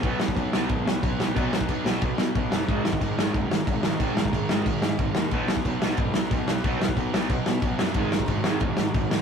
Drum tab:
CC |x---x---x---x---|x---x---x---x---|x---x---x---x---|x---x---x---x---|
SD |--o---o---o---o-|--o---o---o---o-|--o---o---o---o-|--o---o---o---o-|
BD |o--oo---o---o---|o--oo---o---o---|o--oo---o---o---|o--oo---o---o---|

CC |x---x---x---x---|x---x---x---x---|x---x---x---x---|
SD |--o---o---o---o-|--o---o---o---o-|--o---o---o---o-|
BD |o--oo---o---o---|o--oo---o---o---|o--oo---o---o---|